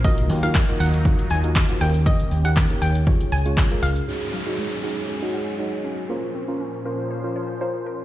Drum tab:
HH |-xox-xox-xox-xox|-xox-xox-xox-xox|----------------|----------------|
SH |xxxxxxxxxxxxxxxx|xxxxxxxxxxxxxxxx|----------------|----------------|
CP |----x-------x---|----x-------x---|----------------|----------------|
BD |o---o---o---o---|o---o---o---o---|----------------|----------------|